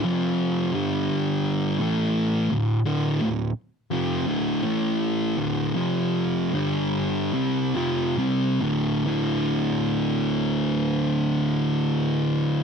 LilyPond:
\new Staff \with { instrumentName = "Distorted electric guitar" } { \clef bass \time 4/4 \key d \minor \tempo 4 = 79 <f, c f>4 <g, d g>4. <a, e a>4 <d, a,>8 | <d, a, d>8 <d, a,>8 r8 <f, c f>8 <d, a, d>8 <a, e a>4 <d, a, d>8 | <f, c f>4 <g, d g>4 <c g c'>8 <f, c f>8 <c g c'>8 <d, a, d>8 | <d, a, d>1 | }